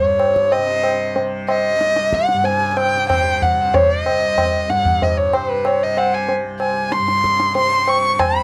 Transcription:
Already playing: tanpura C2 C3, violin C5
0.00 tanpura G2, violin C#5
0.19 tabla na
0.36 tabla ke
0.52 violin D#5, tabla na
0.57 tanpura C3
0.83 tabla na
1.16 tanpura C3, tabla tin
1.48 violin D#5, tabla na
1.75 tanpura C2
1.81 tabla te
1.96 tabla te
2.13 violin F#5, tabla ke
2.29 tabla te
2.33 tanpura G2
2.44 violin G#5, tabla tin
2.71 violin G#5
2.77 violin G5, tabla na
2.94 tanpura C3
3.09 violin G5, tabla na, tabla ge
3.42 violin F#5, tabla ge
3.52 tanpura C3
3.74 violin C#5, tabla tin, tabla ge
3.92 violin D5
4.03 violin D#5, tabla na
4.09 tanpura C2
4.38 tabla na, tabla ge
4.68 tanpura G2, violin F#5, tabla te
4.85 tabla ge
5.02 violin D#5, tabla tin, tabla ge
5.17 violin C#5
5.26 tanpura C3
5.33 violin C5, tabla na
5.50 violin B4
5.65 violin C#5, tabla na
5.83 tanpura C3, violin D#5
5.97 violin F#5, tabla na
6.14 violin G#5
6.29 tabla tin
6.43 tanpura C2
6.60 violin G#5, tabla na
6.92 violin C6, tabla te
6.99 tanpura G2
7.08 tabla te
7.24 tabla ke
7.40 tabla te
7.55 tanpura C3, violin C6, tabla tin
7.88 violin C#6, tabla na
8.16 tanpura C3, violin B5, tabla na, tabla ge

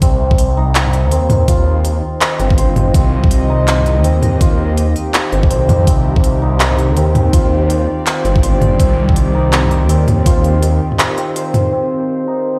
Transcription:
0.02 detuned saw bass C2, synth drone D#3, santur C4, kick, closed hi-hat
0.31 kick
0.38 synth drone C4, closed hi-hat
0.57 santur D#4
0.70 synth drone G4
0.75 clap, closed hi-hat
0.86 mid tom
0.93 closed hi-hat
1.04 detuned saw bass D#2
1.11 santur C4, closed hi-hat
1.30 closed hi-hat, mid tom
1.47 santur F4, synth drone D#5, kick, closed hi-hat
1.85 closed hi-hat
2.21 clap, closed hi-hat
2.40 detuned saw bass G1, santur C4, closed hi-hat
2.50 kick
2.58 detuned saw bass G1, santur C5, closed hi-hat
2.76 closed hi-hat, mid tom
2.94 detuned saw bass C2, santur C4, kick, closed hi-hat
3.24 kick
3.31 closed hi-hat
3.50 santur D#4
3.68 clap, closed hi-hat
3.79 mid tom
3.86 closed hi-hat
3.97 detuned saw bass D#2
4.04 santur C4, closed hi-hat
4.23 closed hi-hat, mid tom
4.41 santur F4, kick, closed hi-hat
4.78 closed hi-hat
4.96 closed hi-hat
5.14 clap, closed hi-hat
5.32 detuned saw bass G1, santur C4, closed hi-hat
5.43 kick
5.51 detuned saw bass C2, santur C5, closed hi-hat
5.69 detuned saw bass F2, closed hi-hat, mid tom
5.87 detuned saw bass C2, santur C4, kick, closed hi-hat
6.16 kick
6.24 closed hi-hat
6.42 santur D#4
6.60 clap, closed hi-hat
6.71 synth drone D5, mid tom
6.78 closed hi-hat
6.90 detuned saw bass D#2
6.97 santur C4, closed hi-hat
7.15 closed hi-hat, mid tom
7.33 santur F4, kick, closed hi-hat
7.70 closed hi-hat
8.07 clap, closed hi-hat
8.25 detuned saw bass G1, santur C4, closed hi-hat
8.36 kick
8.43 detuned saw bass G1, santur C5, closed hi-hat
8.61 closed hi-hat, mid tom
8.79 detuned saw bass C2, santur C4, kick, closed hi-hat
9.09 kick
9.16 closed hi-hat
9.35 santur D#4
9.53 clap, closed hi-hat
9.64 mid tom
9.71 closed hi-hat
9.82 detuned saw bass D#2
9.89 santur C4, closed hi-hat
10.08 closed hi-hat, mid tom
10.26 santur F4, kick, closed hi-hat
10.44 closed hi-hat
10.63 closed hi-hat
10.92 mid tom
10.99 clap, closed hi-hat
11.18 santur C4, closed hi-hat
11.36 santur C5, closed hi-hat
11.54 closed hi-hat, mid tom
11.73 santur C4
12.28 santur D#4

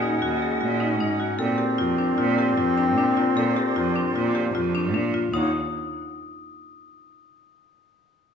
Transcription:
Already playing: cello A#2, clarinet C#4, flute section D#4 D#5 F#5
0.02 marimba D#4
0.22 cello D#2, marimba F#4
0.42 marimba G#4
0.61 cello A#2, marimba F#4
0.80 marimba D#4
1.00 cello G#2, marimba D#4
1.20 marimba F#4
1.39 cello A#2, clarinet C4, flute section D4 A#4 C5, marimba A4
1.58 marimba G4
1.78 cello F2, marimba F4
1.98 marimba D4
2.18 cello A#2, marimba F4
2.38 marimba G4
2.57 cello F2, marimba F4
2.78 marimba D4
2.97 cello A#2, marimba D4
3.17 marimba F4
3.36 cello A#2, marimba A4
3.57 marimba G4
3.76 cello F2, marimba F4
3.96 marimba D4
4.16 cello A#2, marimba F4
4.35 marimba G4
4.55 cello F2, marimba F4
4.75 marimba D4
4.94 cello A#2, marimba D4
5.14 marimba F4
5.32 cello D#2, clarinet A#3, flute section D#4 C#5 F#5, marimba D#4, glockenspiel D#6

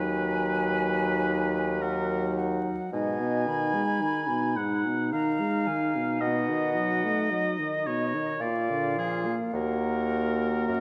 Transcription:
Already playing: bassoon D#2, french horn F#3, clarinet D#4, oboe B4, flute G#5
1.81 french horn F#3, clarinet D#4, oboe A#4, flute F#5
2.36 flute F#5
2.92 french horn G#2, bassoon B2, clarinet D#4, flute D#5, oboe G#5
3.20 french horn B2
3.46 french horn D#3, flute B5
3.74 french horn G#3
4.01 french horn D#3
4.29 french horn B2
4.57 french horn G#2, oboe F#5
4.86 french horn B2
5.13 french horn D#3, oboe F5, flute A#5
5.40 french horn G#3
5.67 french horn D#3, flute G#5
5.96 french horn B2
6.21 bassoon B2, french horn B2, oboe D#5, flute F#5
6.49 french horn D#3
6.77 french horn F#3
7.04 french horn A3
7.30 french horn F#3, flute D#5
7.59 french horn D#3
7.86 french horn B2, oboe C#5
8.15 french horn D#3
8.40 bassoon A#2, french horn A#2, clarinet F4, oboe D5, flute F5
8.70 french horn D3
8.98 french horn F3, oboe G#4
9.26 french horn A#3
9.53 bassoon D#2, french horn A#3, clarinet F#4, oboe A#4, flute F#5
10.68 bassoon F#2, flute F#5

